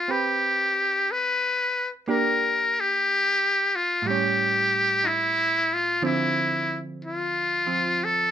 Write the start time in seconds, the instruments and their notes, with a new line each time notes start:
Already playing: hollow-body jazz guitar A3, muted trumpet F4
0.08 hollow-body jazz guitar C4 G4 B4, muted trumpet G4
1.11 muted trumpet B4
2.08 hollow-body jazz guitar A#3 D4 G4, muted trumpet A#4
2.80 muted trumpet G4
3.76 muted trumpet F4
4.02 hollow-body jazz guitar A2 G3
4.07 hollow-body jazz guitar C#4, muted trumpet G4
5.04 muted trumpet D#4 E4
5.74 muted trumpet F4
6.02 hollow-body jazz guitar D3 F3 C4, muted trumpet E4
7.05 muted trumpet F4
7.67 hollow-body jazz guitar F3 C4
8.04 muted trumpet A4